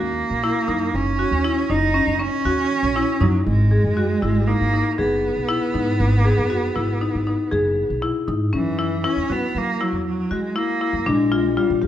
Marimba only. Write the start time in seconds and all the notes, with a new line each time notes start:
Already playing: F#4
0.44 E4
0.68 D#4
1.19 F#4
1.44 E4
1.70 D#4
1.94 C#4
2.19 C#4
2.45 F#4
2.96 E4
3.21 D#4
3.71 G#4
3.97 F#4
4.22 E4
4.48 D#4
4.73 D#4
4.98 G#4
5.49 E4
5.74 D#4
6.25 G#4
6.50 F#4
6.76 E4
7.01 D#4
7.27 D#4
7.51 G#4
8.02 E4
8.28 D#4
8.53 C#4
8.79 E4
9.04 E4
9.30 F#4
9.81 E4
10.31 F#4
10.56 E4
10.81 E4
11.06 D4
11.32 F4
11.57 F4
11.82 G4